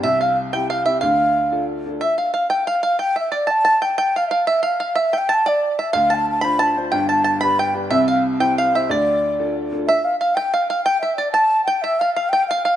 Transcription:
<<
  \new Staff \with { instrumentName = "Five-string banjo" } { \time 6/8 \key d \dorian \tempo 4. = 122 e''8 f''8 r8 g''8 f''8 e''8 | f''2 r4 | e''8 f''8 f''8 g''8 f''8 f''8 | g''8 e''8 d''8 a''8 a''8 g''8 |
g''8 f''8 f''8 e''8 f''8 f''8 | e''8 g''8 a''8 d''4 e''8 | f''8 a''4 b''8 a''8 r8 | g''8 a''8 a''8 b''8 g''8 r8 |
e''8 f''8 r8 g''8 f''8 e''8 | d''2 r4 | e''4 f''8 g''8 f''8 f''8 | g''8 e''8 d''8 a''4 g''8 |
e''8 f''8 f''8 g''8 f''8 f''8 | }
  \new Staff \with { instrumentName = "Flute" } { \time 6/8 \key d \dorian e''8 f''8 r8 g''8 f''8 e''8 | f''2 r4 | e''8 f''8 f''8 g''8 f''8 f''8 | g''8 e''8 d''8 a''4 g''8 |
g''8 f''16. e''32 f''8 e''8 f''8 f''8 | e''8 g''8 a''8 d''4 e''8 | f''8 a''8 a''8 b''8 a''8 r8 | g''8 a''8 a''8 b''8 g''8 r8 |
e''8 f''8 r8 g''8 f''8 e''8 | d''2 r4 | e''8 f''8 f''8 g''8 f''8 f''8 | g''8 e''8 d''8 a''4 g''8 |
e''8 f''8 f''8 g''8 f''8 f''8 | }
  \new Staff \with { instrumentName = "Upright piano" } { \time 6/8 \key d \dorian <c, c>4. <c' e' g'>4 <c' e' g'>8 | <d, d>4. <d' f' a'>4 <d' f' a'>8 | r2. | r2. |
r2. | r2. | <d, d>4. <d' f' c''>4 <d' f' c''>8 | <g,, g,>4. <d' g' b'>4 <d' g' b'>8 |
<c, c>4. <e' g' c''>4 <e' g' c''>8 | <d, d>4. <d' f' a'>4 <d' f' a'>8 | r2. | r2. |
r2. | }
>>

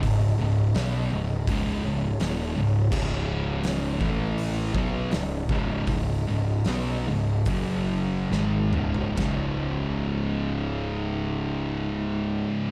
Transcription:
<<
  \new Staff \with { instrumentName = "Tonewheel organ" } { \time 4/4 \key cis \minor \tempo 4 = 78 << { dis''2~ dis''8 cis''4.~ | cis''4. b'4 dis''4.~ | dis''2 r4 dis'4 | <cis gis dis'>1 | } \\ { gis'1~ | gis'4. e'4 gis'4.~ | gis'2. gis4 | r1 | } >> }
  \new Staff \with { instrumentName = "Tonewheel organ" } { \time 4/4 \key cis \minor cis'1~ | cis'4. a4 cis'4.~ | cis'2 fis4 cis4 | r1 | }
  \new Staff \with { instrumentName = "Distorted electric guitar" } { \clef bass \time 4/4 \key cis \minor <cis, gis,>8 <cis, gis,>8 <b, fis b>8 <cis, gis,>8 <cis, gis, cis>8 <cis, gis,>8 <dis, ais, dis>8 <cis, gis,>8 | <cis, gis, cis>4. <a, e a>4 <b, fis b>8 <cis, gis,>8 <cis, gis, cis>8 | <cis, gis,>8 <cis, gis,>8 <b, fis b>8 <cis, gis,>8 <fis, cis fis>4 <gis, dis gis>8 <cis, gis, cis>8 | <cis, gis, cis>1 | }
  \new Staff \with { instrumentName = "Distorted electric guitar" } { \clef bass \time 4/4 \key cis \minor <cis, gis,>8 <cis, gis,>8 <b, fis b>8 <cis, gis,>8 <cis, gis, cis>8 <cis, gis,>8 <dis, ais, dis>8 <cis, gis,>8 | <cis, gis, cis>4. <a, e a>4 <b, fis b>8 <cis, gis,>8 <cis, gis, cis>8 | <cis, gis,>8 <cis, gis,>8 <b, fis b>8 <cis, gis,>8 <fis, cis fis>4 <gis, dis gis>8 <cis, gis, cis>8 | <cis, gis, cis>1 | }
  \new Staff \with { instrumentName = "Distorted electric guitar" } { \clef bass \time 4/4 \key cis \minor r1 | <cis, gis, cis>4. <a, e a>4 <b, fis b>8 <cis, gis,>8 <cis, gis, cis>8 | <cis, gis,>8 <cis, gis,>8 <b, fis b>8 <cis, gis,>8 <fis, cis fis>4 <gis, dis gis>8 <cis, gis, cis>8 | <cis, gis, cis>1 | }
  \new Staff \with { instrumentName = "Picked electric bass" } { \clef bass \time 4/4 \key cis \minor cis,,8 cis,,8 b,,8 cis,,8 cis,,8 cis,,8 dis,,8 cis,,8 | cis,,4. a,,4 b,,8 cis,,8 cis,,8 | cis,,8 cis,,8 b,,8 cis,,8 fis,,4 gis,,8 cis,,8 | cis,,1 | }
  \new DrumStaff \with { instrumentName = "Drums" } \drummode { \time 4/4 <hho bd>4 <hho sn>4 <hho bd>4 <hho sn>4 | <cymc bd>4 <hho sn>8 bd8 hho8 bd8 <hho sn>8 bd8 | <hho bd>4 <hho sn>4 <hho bd>4 sn8 toml16 tomfh16 | <bd rb sn>4 r4 r4 r4 | }
>>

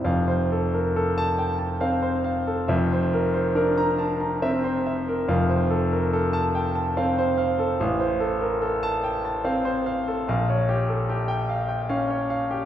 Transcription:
<<
  \new Staff \with { instrumentName = "Grand piano" } { \time 3/4 \key f \major \tempo 4 = 72 << { r4 r16 a''8 r4 r16 | r4 r16 bes''8 r4 r16 | r4 r16 a''8 r4 r16 | r4 r16 a''8 r4 r16 |
r4 r16 g''8 r4 r16 | } \\ { f''16 c''16 a'16 bes'16 a'8 g''16 a''16 f''16 c''16 f''16 a'16 | e''16 c''16 bes'16 c''16 bes'8 a''16 bes''16 e''16 c''16 e''16 bes'16 | f''16 c''16 a'16 bes'16 a'8 g''16 a''16 f''16 c''16 f''16 a'16 | f''16 c''16 a'16 bes'16 a'8 g''16 a''16 f''16 c''16 f''16 a'16 |
f''16 des''16 g'16 a'16 g'8 f''16 g''16 f''16 des''16 f''16 g'16 | } >> }
  \new Staff \with { instrumentName = "Grand piano" } { \clef bass \time 3/4 \key f \major <f,, f,>2 c'4 | <f,, f,>4 d'8 r8 c'4 | <f,, f,>2 c'4 | a,,2 c'4 |
bes,,2 des'4 | }
>>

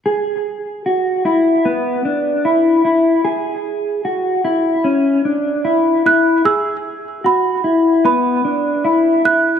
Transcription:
<<
  \new Staff \with { instrumentName = "Celesta" } { \time 4/4 \key e \mixolydian \tempo 4 = 75 r1 | r2. r8 fis'''8 | e'''4 b''4 b''4. fis'''8 | }
  \new Staff \with { instrumentName = "Clean electric guitar" } { \time 4/4 \key e \mixolydian gis'4 fis'8 e'8 b8 d'8 e'8 e'8 | gis'4 fis'8 e'8 cis'8 d'8 e'8 e'8 | gis'4 fis'8 e'8 b8 d'8 e'8 e'8 | }
>>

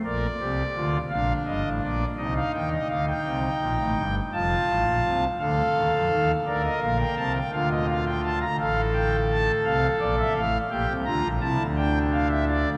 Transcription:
<<
  \new Staff \with { instrumentName = "Pipe organ" } { \time 12/8 \key bes \major \tempo 4. = 56 << { d''4. f''8 ees''8 d''8 ees''16 f''16 g''16 ees''16 f''16 g''4.~ g''16 | a''4. f''4. d''16 ees''16 f''16 g''16 a''16 g''16 f''16 ees''16 f''16 g''16 a''16 bes''16 | f''8 g''8 a''8 f''8 d''16 e''16 f''8 g''8 bes''8 a''8 g''8 f''16 e''16 d''8 | } \\ { bes'8 g'8 f'8 d'4. ees'2. | f'4. a'4. bes'4. f'4. | a'2. g'8 f'8 e'8 d'4. | } >> }
  \new Staff \with { instrumentName = "Pipe organ" } { \clef bass \time 12/8 \key bes \major <bes,, bes,>8 <c, c>8 <d, d>8 <bes,, bes,>8 <g,, g,>16 <a,, a,>16 <bes,, bes,>8 <c, c>8 <ees, ees>8 <d, d>8 <c, c>8 <bes,, bes,>16 <a,, a,>16 <g,, g,>8 | <f,, f,>8 <a,, a,>16 <bes,, bes,>16 <c, c>8 <d, d>8 <ees, ees>16 <f, f>16 <ees, ees>8 <d, d>8 <bes,, bes,>8 <c, c>8 <d, d>4. | <a,, a,>4. <c, c>8 <bes,, bes,>8 <a,, a,>8 <bes,, bes,>16 <c, c>16 <d, d>16 <bes,, bes,>16 <c, c>16 <d, d>4.~ <d, d>16 | }
>>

